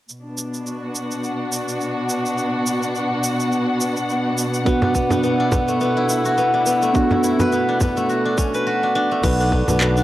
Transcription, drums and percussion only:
0.09 cabasa soft
0.38 cabasa medium
0.54 cabasa soft
0.67 cabasa soft
0.95 cabasa medium
1.11 cabasa soft
1.24 cabasa soft
1.52 cabasa medium
1.68 cabasa soft
1.81 cabasa soft
2.09 cabasa medium
2.26 cabasa soft
2.38 cabasa soft
2.67 cabasa medium
2.83 cabasa soft
2.95 cabasa soft
3.24 cabasa medium
3.40 cabasa soft
3.52 cabasa soft
3.81 cabasa medium
3.97 cabasa soft
4.09 cabasa soft
4.38 cabasa medium
4.54 cabasa soft
4.66 kick loud
4.66 cabasa soft
4.82 frame drum medium
4.95 kick medium
4.95 cabasa medium
5.10 frame drum medium
5.10 cabasa soft
5.24 cabasa soft
5.52 kick loud
5.52 frame drum medium
5.52 cabasa medium
5.68 cabasa soft
5.81 cabasa soft
6.09 cabasa medium
6.25 cabasa soft
6.38 cabasa soft
6.66 cabasa medium
6.82 cabasa soft
6.95 kick loud
6.95 cabasa soft
7.11 frame drum medium
7.24 cabasa medium
7.40 frame drum medium
7.40 cabasa soft
7.52 cabasa soft
7.81 kick medium
7.81 frame drum medium
7.81 cabasa medium
7.97 cabasa soft
8.09 cabasa soft
8.38 kick medium
8.38 cabasa medium
8.54 cabasa soft
9.23 kick loud
9.23 crash medium
9.23 cabasa medium
9.40 cabasa soft
9.52 kick medium
9.68 frame drum medium
9.68 cabasa medium
9.81 clap loud
9.81 cabasa medium
9.97 cabasa soft

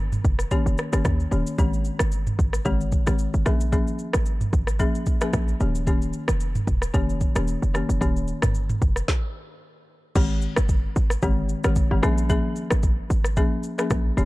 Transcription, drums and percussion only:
0.12 mid tom medium
0.12 shaker soft
0.25 kick medium
0.25 shaker medium
0.39 cross-stick medium
0.39 shaker medium
0.51 kick medium
0.51 shaker medium
0.67 shaker medium
0.78 cross-stick medium
0.78 shaker medium
0.93 cross-stick medium
0.93 shaker medium
1.05 kick medium
1.05 cross-stick medium
1.05 shaker medium
1.20 shaker soft
1.32 shaker medium
1.47 shaker loud
1.59 kick loud
1.59 shaker medium
1.73 shaker medium
1.85 shaker medium
1.99 cross-stick loud
1.99 shaker medium
2.12 shaker medium
2.27 mid tom medium
2.27 shaker soft
2.39 kick medium
2.39 shaker medium
2.53 cross-stick medium
2.53 shaker medium
2.65 kick medium
2.65 shaker medium
2.81 shaker medium
2.92 kick medium
2.92 shaker medium
3.07 cross-stick medium
3.07 shaker medium
3.19 shaker medium
3.34 shaker soft
3.46 cross-stick medium
3.46 shaker medium
3.61 shaker loud
3.72 kick loud
3.72 shaker medium
3.87 shaker medium
3.99 shaker medium
4.13 cross-stick loud
4.13 shaker loud
4.26 shaker medium
4.41 mid tom medium
4.41 shaker soft
4.53 kick medium
4.53 shaker medium
4.67 cross-stick medium
4.67 shaker medium
4.79 kick medium
4.79 shaker medium
4.95 shaker medium
5.06 kick medium
5.06 shaker medium
5.21 cross-stick loud
5.21 shaker loud
5.33 kick medium
5.33 cross-stick medium
5.33 shaker medium
5.48 shaker soft
5.60 shaker medium
5.75 shaker loud
5.87 kick loud
5.87 shaker medium
6.02 shaker medium
6.13 shaker medium
6.28 cross-stick loud
6.28 shaker loud
6.40 shaker medium
6.55 mid tom medium
6.55 shaker soft
6.67 kick medium
6.67 shaker medium
6.82 cross-stick medium
6.82 shaker medium
6.94 kick medium
6.94 shaker medium
7.10 shaker medium
7.21 kick medium
7.21 shaker medium
7.36 cross-stick medium
7.36 shaker loud
7.48 shaker medium
7.63 shaker soft
7.75 cross-stick medium
7.75 shaker medium
7.90 shaker loud
8.01 kick loud
8.01 shaker medium
8.16 shaker medium
8.27 shaker medium
8.42 cross-stick loud
8.42 mid tom medium
8.42 shaker loud
8.55 shaker medium
8.70 mid tom medium
8.70 shaker soft
8.82 kick medium
8.82 shaker medium
8.96 cross-stick medium
8.96 shaker medium
9.08 kick loud
9.08 snare medium
10.16 kick loud
10.16 crash loud
10.16 shaker medium
10.42 shaker medium
10.56 cross-stick loud
10.56 shaker medium
10.69 kick loud
10.69 shaker medium
10.96 shaker medium
11.10 cross-stick medium
11.10 shaker medium
11.22 kick loud
11.22 shaker medium
11.49 shaker medium
11.64 cross-stick loud
11.64 shaker medium
11.76 kick loud
11.76 shaker medium
12.03 cross-stick medium
12.03 shaker medium
12.18 shaker medium
12.30 kick loud
12.30 shaker medium
12.56 shaker medium
12.71 cross-stick loud
12.71 shaker medium
12.83 kick loud
12.83 shaker medium
13.10 shaker medium
13.24 cross-stick medium
13.24 shaker medium
13.37 kick loud
13.37 shaker medium
13.63 shaker medium
13.78 cross-stick loud
13.78 shaker medium
13.90 kick loud
13.90 cross-stick medium
13.90 shaker medium
14.18 shaker medium

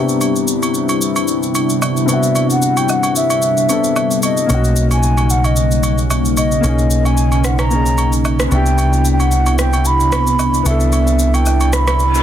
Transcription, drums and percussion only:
0.09 shaker medium
0.21 high agogo medium
0.21 shaker medium
0.36 shaker medium
0.48 shaker medium
0.63 high agogo medium
0.63 shaker soft
0.74 shaker medium
0.89 high agogo medium
0.89 shaker soft
1.02 shaker medium
1.16 high agogo medium
1.16 shaker medium
1.28 shaker medium
1.43 shaker medium
1.55 high agogo medium
1.55 shaker medium
1.70 shaker medium
1.82 high agogo medium
1.82 low woodblock medium
1.82 shaker medium
1.97 shaker medium
2.09 high agogo medium
2.09 shaker medium
2.23 shaker medium
2.35 high agogo medium
2.35 shaker medium
2.50 shaker medium
2.62 shaker medium
2.77 high agogo medium
2.77 shaker soft
2.89 low woodblock medium
2.89 shaker medium
3.03 high agogo medium
3.03 shaker soft
3.16 shaker medium
3.30 high agogo medium
3.30 shaker medium
3.42 shaker medium
3.57 shaker medium
3.69 high agogo medium
3.69 shaker medium
3.84 shaker medium
3.96 high agogo medium
3.96 low woodblock medium
3.96 shaker medium
4.11 shaker medium
4.23 high agogo medium
4.23 shaker medium
4.37 shaker medium
4.50 high agogo medium
4.50 shaker medium
4.64 shaker medium
4.76 shaker medium
4.91 high agogo medium
4.91 shaker soft
5.03 shaker medium
5.17 high agogo medium
5.17 shaker soft
5.30 shaker medium
5.44 high agogo medium
5.44 shaker medium
5.56 shaker medium
5.71 shaker medium
5.83 high agogo medium
5.83 shaker medium
5.98 shaker medium
6.10 high agogo medium
6.10 low woodblock medium
6.10 shaker medium
6.25 shaker medium
6.37 high agogo medium
6.37 shaker medium
6.52 shaker medium
6.64 high agogo medium
6.64 shaker medium
6.79 shaker medium
6.91 shaker medium
7.05 high agogo medium
7.05 shaker soft
7.17 shaker medium
7.32 high agogo medium
7.32 shaker soft
7.44 cross-stick medium
7.44 shaker medium
7.59 cross-stick medium
7.59 high agogo medium
7.59 shaker medium
7.71 shaker medium
7.86 shaker medium
7.98 high agogo medium
7.98 shaker medium
8.13 shaker medium
8.25 high agogo medium
8.25 low woodblock medium
8.25 shaker medium
8.40 cross-stick loud
8.40 shaker medium
8.51 high agogo medium
8.51 shaker medium
8.66 shaker medium
8.78 high agogo medium
8.78 shaker medium
8.93 shaker medium
9.05 shaker medium
9.20 high agogo medium
9.20 shaker soft
9.32 shaker medium
9.46 high agogo medium
9.46 shaker soft
9.59 cross-stick medium
9.59 shaker medium
9.73 high agogo medium
9.73 shaker medium
9.85 shaker medium
10.00 shaker medium
10.12 cross-stick medium
10.12 high agogo medium
10.12 shaker medium
10.27 shaker medium
10.39 high agogo medium
10.39 low woodblock medium
10.39 shaker medium
10.54 shaker medium
10.66 high agogo medium
10.66 shaker medium
10.80 shaker medium
10.92 high agogo medium
10.92 shaker medium
11.07 shaker medium
11.19 shaker medium
11.34 high agogo medium
11.34 shaker medium
11.46 low woodblock medium
11.46 shaker medium
11.61 high agogo medium
11.61 shaker soft
11.73 cross-stick medium
11.73 shaker medium
11.87 cross-stick loud
11.87 high agogo medium
11.87 shaker medium
11.99 shaker medium
12.15 shaker medium

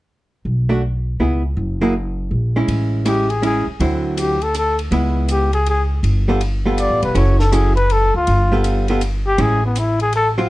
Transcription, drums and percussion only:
2.68 ride medium
3.06 hi-hat pedal soft
3.06 ride medium
3.30 ride soft
3.43 ride soft
3.80 ride soft
4.17 hi-hat pedal soft
4.17 ride medium
4.42 ride soft
4.54 hi-hat pedal medium
4.54 ride medium
4.79 ride soft
4.92 ride soft
5.28 hi-hat pedal medium
5.28 ride medium
5.53 ride soft
5.66 ride medium
6.04 ride medium
6.41 ride medium
6.78 hi-hat pedal soft
6.78 ride medium
7.03 ride soft
7.15 ride medium
7.40 snare soft
7.52 hi-hat pedal medium
7.52 ride medium
7.77 ride soft
7.90 ride medium
8.27 ride medium
8.64 hi-hat pedal medium
8.64 ride medium
8.88 ride soft
9.01 hi-hat pedal soft
9.01 ride medium
9.38 ride medium
9.76 hi-hat pedal medium
9.76 ride medium
10.00 ride soft
10.13 ride medium

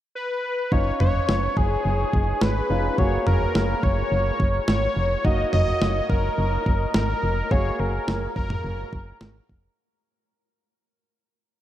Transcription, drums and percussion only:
0.72 kick loud
1.00 mid tom loud
1.29 snare loud
1.57 kick medium
2.13 kick medium
2.41 snare loud
2.98 kick loud
3.27 mid tom loud
3.55 snare loud
3.83 kick loud
4.40 kick medium
4.68 snare loud
5.25 kick loud
5.53 mid tom loud
5.82 snare loud
6.10 kick medium
6.66 kick medium
6.94 snare loud
7.51 kick loud
8.08 snare loud
8.36 kick loud
8.50 mid tom medium
8.93 kick medium
9.21 snare loud
9.49 kick medium

